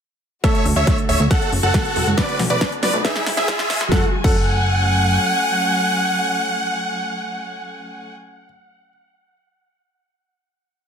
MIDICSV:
0, 0, Header, 1, 9, 480
1, 0, Start_track
1, 0, Key_signature, 3, "minor"
1, 0, Tempo, 434783
1, 484, Time_signature, 4, 2, 24, 8
1, 12009, End_track
2, 0, Start_track
2, 0, Title_t, "Synth pluck"
2, 0, Program_c, 0, 84
2, 483, Note_on_c, 0, 76, 99
2, 707, Note_off_c, 0, 76, 0
2, 842, Note_on_c, 0, 76, 94
2, 1067, Note_off_c, 0, 76, 0
2, 1202, Note_on_c, 0, 76, 89
2, 1352, Note_off_c, 0, 76, 0
2, 1442, Note_on_c, 0, 78, 94
2, 1667, Note_off_c, 0, 78, 0
2, 1803, Note_on_c, 0, 78, 89
2, 2307, Note_off_c, 0, 78, 0
2, 2402, Note_on_c, 0, 74, 104
2, 2627, Note_off_c, 0, 74, 0
2, 2761, Note_on_c, 0, 74, 97
2, 2986, Note_off_c, 0, 74, 0
2, 3121, Note_on_c, 0, 74, 91
2, 3272, Note_off_c, 0, 74, 0
2, 3362, Note_on_c, 0, 76, 96
2, 3587, Note_off_c, 0, 76, 0
2, 3724, Note_on_c, 0, 76, 91
2, 4227, Note_off_c, 0, 76, 0
2, 4324, Note_on_c, 0, 78, 95
2, 4457, Note_off_c, 0, 78, 0
2, 4683, Note_on_c, 0, 78, 93
2, 9313, Note_off_c, 0, 78, 0
2, 12009, End_track
3, 0, Start_track
3, 0, Title_t, "Supersaw synth"
3, 0, Program_c, 1, 81
3, 484, Note_on_c, 1, 73, 77
3, 484, Note_on_c, 1, 76, 95
3, 708, Note_off_c, 1, 73, 0
3, 708, Note_off_c, 1, 76, 0
3, 844, Note_on_c, 1, 73, 79
3, 844, Note_on_c, 1, 76, 94
3, 1068, Note_off_c, 1, 73, 0
3, 1068, Note_off_c, 1, 76, 0
3, 1201, Note_on_c, 1, 76, 83
3, 1203, Note_on_c, 1, 73, 74
3, 1352, Note_off_c, 1, 73, 0
3, 1352, Note_off_c, 1, 76, 0
3, 1442, Note_on_c, 1, 78, 97
3, 1443, Note_on_c, 1, 69, 81
3, 1667, Note_off_c, 1, 69, 0
3, 1667, Note_off_c, 1, 78, 0
3, 1800, Note_on_c, 1, 69, 79
3, 1802, Note_on_c, 1, 78, 96
3, 2306, Note_off_c, 1, 69, 0
3, 2306, Note_off_c, 1, 78, 0
3, 2399, Note_on_c, 1, 74, 101
3, 2400, Note_on_c, 1, 71, 75
3, 2625, Note_off_c, 1, 71, 0
3, 2625, Note_off_c, 1, 74, 0
3, 2760, Note_on_c, 1, 74, 94
3, 2761, Note_on_c, 1, 71, 79
3, 2986, Note_off_c, 1, 71, 0
3, 2986, Note_off_c, 1, 74, 0
3, 3119, Note_on_c, 1, 74, 87
3, 3120, Note_on_c, 1, 71, 74
3, 3271, Note_off_c, 1, 71, 0
3, 3271, Note_off_c, 1, 74, 0
3, 3361, Note_on_c, 1, 68, 78
3, 3361, Note_on_c, 1, 76, 95
3, 3586, Note_off_c, 1, 68, 0
3, 3586, Note_off_c, 1, 76, 0
3, 3723, Note_on_c, 1, 68, 80
3, 3723, Note_on_c, 1, 76, 100
3, 4227, Note_off_c, 1, 68, 0
3, 4227, Note_off_c, 1, 76, 0
3, 4324, Note_on_c, 1, 78, 89
3, 4458, Note_off_c, 1, 78, 0
3, 4683, Note_on_c, 1, 78, 103
3, 9002, Note_off_c, 1, 78, 0
3, 12009, End_track
4, 0, Start_track
4, 0, Title_t, "Grand piano"
4, 0, Program_c, 2, 0
4, 483, Note_on_c, 2, 57, 72
4, 483, Note_on_c, 2, 69, 97
4, 1347, Note_off_c, 2, 57, 0
4, 1347, Note_off_c, 2, 69, 0
4, 4323, Note_on_c, 2, 69, 96
4, 4457, Note_off_c, 2, 69, 0
4, 4684, Note_on_c, 2, 69, 92
4, 9313, Note_off_c, 2, 69, 0
4, 12009, End_track
5, 0, Start_track
5, 0, Title_t, "String section"
5, 0, Program_c, 3, 48
5, 482, Note_on_c, 3, 50, 75
5, 482, Note_on_c, 3, 54, 67
5, 482, Note_on_c, 3, 57, 73
5, 482, Note_on_c, 3, 66, 94
5, 1428, Note_off_c, 3, 54, 0
5, 1428, Note_off_c, 3, 57, 0
5, 1433, Note_off_c, 3, 50, 0
5, 1441, Note_on_c, 3, 54, 68
5, 1441, Note_on_c, 3, 57, 70
5, 1442, Note_on_c, 3, 49, 77
5, 2387, Note_off_c, 3, 57, 0
5, 2393, Note_off_c, 3, 49, 0
5, 2393, Note_off_c, 3, 54, 0
5, 2400, Note_on_c, 3, 57, 70
5, 2401, Note_on_c, 3, 50, 80
5, 2401, Note_on_c, 3, 59, 78
5, 3334, Note_off_c, 3, 66, 0
5, 3352, Note_off_c, 3, 50, 0
5, 3352, Note_off_c, 3, 57, 0
5, 3362, Note_on_c, 3, 52, 77
5, 3362, Note_on_c, 3, 56, 72
5, 3362, Note_on_c, 3, 68, 86
5, 4303, Note_off_c, 3, 59, 0
5, 4313, Note_off_c, 3, 52, 0
5, 4313, Note_off_c, 3, 56, 0
5, 4313, Note_off_c, 3, 68, 0
5, 4324, Note_on_c, 3, 54, 90
5, 4324, Note_on_c, 3, 80, 101
5, 4325, Note_on_c, 3, 57, 78
5, 4325, Note_on_c, 3, 61, 77
5, 8953, Note_off_c, 3, 80, 0
5, 8954, Note_off_c, 3, 54, 0
5, 8955, Note_off_c, 3, 57, 0
5, 8955, Note_off_c, 3, 61, 0
5, 12009, End_track
6, 0, Start_track
6, 0, Title_t, "Synth arpeggio sound"
6, 0, Program_c, 4, 84
6, 722, Note_on_c, 4, 62, 75
6, 769, Note_off_c, 4, 62, 0
6, 842, Note_on_c, 4, 57, 79
6, 889, Note_off_c, 4, 57, 0
6, 963, Note_on_c, 4, 66, 83
6, 1040, Note_off_c, 4, 66, 0
6, 1203, Note_on_c, 4, 54, 75
6, 1317, Note_off_c, 4, 54, 0
6, 1323, Note_on_c, 4, 57, 105
6, 1400, Note_off_c, 4, 57, 0
6, 1442, Note_on_c, 4, 68, 80
6, 1557, Note_off_c, 4, 68, 0
6, 1682, Note_on_c, 4, 61, 75
6, 1796, Note_off_c, 4, 61, 0
6, 1803, Note_on_c, 4, 66, 75
6, 1880, Note_off_c, 4, 66, 0
6, 1923, Note_on_c, 4, 56, 89
6, 2001, Note_off_c, 4, 56, 0
6, 2163, Note_on_c, 4, 54, 74
6, 2277, Note_off_c, 4, 54, 0
6, 2283, Note_on_c, 4, 56, 104
6, 2360, Note_off_c, 4, 56, 0
6, 2641, Note_on_c, 4, 59, 78
6, 2689, Note_off_c, 4, 59, 0
6, 2762, Note_on_c, 4, 57, 75
6, 2809, Note_off_c, 4, 57, 0
6, 2882, Note_on_c, 4, 62, 85
6, 2960, Note_off_c, 4, 62, 0
6, 3122, Note_on_c, 4, 54, 79
6, 3236, Note_off_c, 4, 54, 0
6, 3241, Note_on_c, 4, 57, 102
6, 3320, Note_off_c, 4, 57, 0
6, 3361, Note_on_c, 4, 71, 82
6, 3476, Note_off_c, 4, 71, 0
6, 3602, Note_on_c, 4, 64, 81
6, 3717, Note_off_c, 4, 64, 0
6, 3722, Note_on_c, 4, 68, 82
6, 3800, Note_off_c, 4, 68, 0
6, 3842, Note_on_c, 4, 56, 85
6, 3920, Note_off_c, 4, 56, 0
6, 4083, Note_on_c, 4, 52, 78
6, 4197, Note_off_c, 4, 52, 0
6, 4204, Note_on_c, 4, 56, 100
6, 4281, Note_off_c, 4, 56, 0
6, 4324, Note_on_c, 4, 54, 93
6, 4457, Note_off_c, 4, 54, 0
6, 4684, Note_on_c, 4, 54, 91
6, 4818, Note_off_c, 4, 54, 0
6, 12009, End_track
7, 0, Start_track
7, 0, Title_t, "Analog synth bass"
7, 0, Program_c, 5, 38
7, 722, Note_on_c, 5, 38, 92
7, 804, Note_off_c, 5, 38, 0
7, 842, Note_on_c, 5, 38, 82
7, 924, Note_off_c, 5, 38, 0
7, 1203, Note_on_c, 5, 26, 92
7, 1285, Note_off_c, 5, 26, 0
7, 1324, Note_on_c, 5, 38, 81
7, 1405, Note_off_c, 5, 38, 0
7, 1683, Note_on_c, 5, 30, 91
7, 1765, Note_off_c, 5, 30, 0
7, 1803, Note_on_c, 5, 30, 85
7, 1885, Note_off_c, 5, 30, 0
7, 2163, Note_on_c, 5, 28, 97
7, 2245, Note_off_c, 5, 28, 0
7, 2283, Note_on_c, 5, 30, 77
7, 2365, Note_off_c, 5, 30, 0
7, 2641, Note_on_c, 5, 35, 91
7, 2724, Note_off_c, 5, 35, 0
7, 2760, Note_on_c, 5, 35, 81
7, 2844, Note_off_c, 5, 35, 0
7, 3120, Note_on_c, 5, 30, 90
7, 3203, Note_off_c, 5, 30, 0
7, 3241, Note_on_c, 5, 35, 85
7, 3324, Note_off_c, 5, 35, 0
7, 3601, Note_on_c, 5, 28, 91
7, 3684, Note_off_c, 5, 28, 0
7, 3720, Note_on_c, 5, 28, 82
7, 3804, Note_off_c, 5, 28, 0
7, 4082, Note_on_c, 5, 26, 90
7, 4164, Note_off_c, 5, 26, 0
7, 4201, Note_on_c, 5, 28, 82
7, 4284, Note_off_c, 5, 28, 0
7, 4323, Note_on_c, 5, 30, 101
7, 4457, Note_off_c, 5, 30, 0
7, 4683, Note_on_c, 5, 30, 95
7, 5719, Note_off_c, 5, 30, 0
7, 12009, End_track
8, 0, Start_track
8, 0, Title_t, "Riser"
8, 0, Program_c, 6, 103
8, 482, Note_on_c, 6, 60, 80
8, 4322, Note_off_c, 6, 60, 0
8, 12009, End_track
9, 0, Start_track
9, 0, Title_t, "Drums"
9, 483, Note_on_c, 9, 36, 114
9, 483, Note_on_c, 9, 38, 48
9, 483, Note_on_c, 9, 42, 96
9, 593, Note_off_c, 9, 38, 0
9, 593, Note_off_c, 9, 42, 0
9, 594, Note_off_c, 9, 36, 0
9, 603, Note_on_c, 9, 42, 42
9, 714, Note_off_c, 9, 42, 0
9, 724, Note_on_c, 9, 46, 106
9, 834, Note_off_c, 9, 46, 0
9, 844, Note_on_c, 9, 42, 40
9, 954, Note_off_c, 9, 42, 0
9, 963, Note_on_c, 9, 36, 115
9, 963, Note_on_c, 9, 38, 52
9, 963, Note_on_c, 9, 42, 98
9, 1073, Note_off_c, 9, 36, 0
9, 1074, Note_off_c, 9, 38, 0
9, 1074, Note_off_c, 9, 42, 0
9, 1083, Note_on_c, 9, 42, 40
9, 1193, Note_off_c, 9, 42, 0
9, 1203, Note_on_c, 9, 46, 105
9, 1314, Note_off_c, 9, 46, 0
9, 1443, Note_on_c, 9, 36, 116
9, 1443, Note_on_c, 9, 38, 56
9, 1443, Note_on_c, 9, 42, 94
9, 1553, Note_off_c, 9, 36, 0
9, 1553, Note_off_c, 9, 38, 0
9, 1553, Note_off_c, 9, 42, 0
9, 1564, Note_on_c, 9, 42, 38
9, 1674, Note_off_c, 9, 42, 0
9, 1683, Note_on_c, 9, 46, 104
9, 1793, Note_off_c, 9, 46, 0
9, 1803, Note_on_c, 9, 42, 42
9, 1914, Note_off_c, 9, 42, 0
9, 1923, Note_on_c, 9, 36, 113
9, 1923, Note_on_c, 9, 38, 66
9, 1923, Note_on_c, 9, 42, 94
9, 2033, Note_off_c, 9, 36, 0
9, 2033, Note_off_c, 9, 38, 0
9, 2033, Note_off_c, 9, 42, 0
9, 2043, Note_on_c, 9, 42, 40
9, 2153, Note_off_c, 9, 42, 0
9, 2163, Note_on_c, 9, 46, 99
9, 2273, Note_off_c, 9, 46, 0
9, 2283, Note_on_c, 9, 42, 42
9, 2393, Note_off_c, 9, 42, 0
9, 2403, Note_on_c, 9, 36, 119
9, 2404, Note_on_c, 9, 38, 78
9, 2404, Note_on_c, 9, 42, 91
9, 2513, Note_off_c, 9, 36, 0
9, 2514, Note_off_c, 9, 38, 0
9, 2514, Note_off_c, 9, 42, 0
9, 2524, Note_on_c, 9, 42, 42
9, 2634, Note_off_c, 9, 42, 0
9, 2643, Note_on_c, 9, 38, 80
9, 2643, Note_on_c, 9, 46, 111
9, 2643, Note_on_c, 9, 63, 59
9, 2754, Note_off_c, 9, 38, 0
9, 2754, Note_off_c, 9, 46, 0
9, 2754, Note_off_c, 9, 63, 0
9, 2883, Note_on_c, 9, 36, 127
9, 2884, Note_on_c, 9, 38, 90
9, 2884, Note_on_c, 9, 42, 97
9, 2993, Note_off_c, 9, 36, 0
9, 2994, Note_off_c, 9, 38, 0
9, 2994, Note_off_c, 9, 42, 0
9, 3004, Note_on_c, 9, 42, 40
9, 3114, Note_off_c, 9, 42, 0
9, 3123, Note_on_c, 9, 38, 85
9, 3123, Note_on_c, 9, 46, 110
9, 3233, Note_off_c, 9, 38, 0
9, 3233, Note_off_c, 9, 46, 0
9, 3363, Note_on_c, 9, 36, 126
9, 3364, Note_on_c, 9, 38, 90
9, 3364, Note_on_c, 9, 42, 90
9, 3473, Note_off_c, 9, 36, 0
9, 3475, Note_off_c, 9, 38, 0
9, 3475, Note_off_c, 9, 42, 0
9, 3484, Note_on_c, 9, 38, 81
9, 3484, Note_on_c, 9, 42, 38
9, 3595, Note_off_c, 9, 38, 0
9, 3595, Note_off_c, 9, 42, 0
9, 3604, Note_on_c, 9, 38, 99
9, 3604, Note_on_c, 9, 46, 111
9, 3715, Note_off_c, 9, 38, 0
9, 3715, Note_off_c, 9, 46, 0
9, 3724, Note_on_c, 9, 38, 90
9, 3724, Note_on_c, 9, 42, 43
9, 3835, Note_off_c, 9, 38, 0
9, 3835, Note_off_c, 9, 42, 0
9, 3843, Note_on_c, 9, 36, 125
9, 3843, Note_on_c, 9, 38, 101
9, 3843, Note_on_c, 9, 42, 92
9, 3954, Note_off_c, 9, 36, 0
9, 3954, Note_off_c, 9, 38, 0
9, 3954, Note_off_c, 9, 42, 0
9, 3964, Note_on_c, 9, 38, 91
9, 3964, Note_on_c, 9, 42, 42
9, 4074, Note_off_c, 9, 38, 0
9, 4074, Note_off_c, 9, 42, 0
9, 4084, Note_on_c, 9, 38, 107
9, 4084, Note_on_c, 9, 46, 117
9, 4195, Note_off_c, 9, 38, 0
9, 4195, Note_off_c, 9, 46, 0
9, 4205, Note_on_c, 9, 38, 96
9, 4205, Note_on_c, 9, 42, 44
9, 4316, Note_off_c, 9, 38, 0
9, 4316, Note_off_c, 9, 42, 0
9, 4324, Note_on_c, 9, 36, 115
9, 4325, Note_on_c, 9, 38, 88
9, 4434, Note_off_c, 9, 36, 0
9, 4436, Note_off_c, 9, 38, 0
9, 4684, Note_on_c, 9, 36, 114
9, 4685, Note_on_c, 9, 49, 90
9, 4794, Note_off_c, 9, 36, 0
9, 4795, Note_off_c, 9, 49, 0
9, 12009, End_track
0, 0, End_of_file